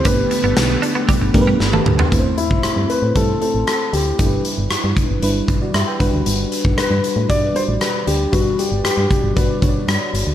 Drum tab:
HH |x-x-x-x-x-x-----|x-x-x-x-x-x-x-x-|x-x-x-x-x-x-x-x-|x-x-x-x-x-x-x-x-|
TB |----x-----------|----------------|----------------|----------------|
SD |----o-------o---|----r-------r---|----r-------r---|----r-------r---|
T1 |-------------o--|----------------|----------------|----------------|
T2 |--------------o-|----------------|----------------|----------------|
FT |---------------o|----------------|----------------|----------------|
BD |o-------o-o-----|o--o----o-------|o-----o---o---o-|---o----o-------|

HH |x-x-x-x-x-x-x-x-|
TB |----------------|
SD |----r-------r---|
T1 |----------------|
T2 |----------------|
FT |----------------|
BD |o-----o-o-o-----|